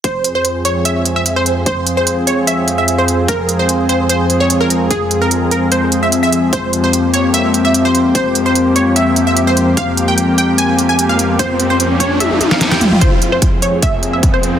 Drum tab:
HH |x-x-x-x-x-x-x-x-|x-x-x-x-x-x-x-x-|x-x-x-x-x-x-x-x-|x-x-x-x-x-x-x-x-|
SD |----------------|----------------|----------------|----------------|
T1 |----------------|----------------|----------------|----------------|
T2 |----------------|----------------|----------------|----------------|
BD |o---------------|o---------------|o---------------|o---------------|

HH |x-x-x-x-x-x-x-x-|x-x-x-x-x-x-x-x-|x-x-x-x-x-x-x-x-|x-x-x-x-x-x-x-x-|
SD |----------------|----------------|----------------|-----------ooo--|
T1 |----------------|----------------|----------------|--------ooo-----|
T2 |----------------|----------------|----------------|--------------oo|
BD |o---------------|o---------------|o---------------|o-----o---------|

HH |x-x-x-x-x-x-x-x-|
SD |----------------|
T1 |----------------|
T2 |----------------|
BD |o---o---o---o---|